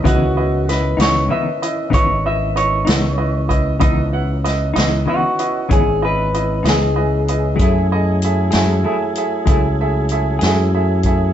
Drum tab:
HH |x-xx-xx-xx-x|x-xx-xx-xx-x|x-xx-xx-xx-x|
SD |--oo-----o--|--oo-----o--|---o-----o--|
BD |o-----o----o|o-----o-----|o-----o----o|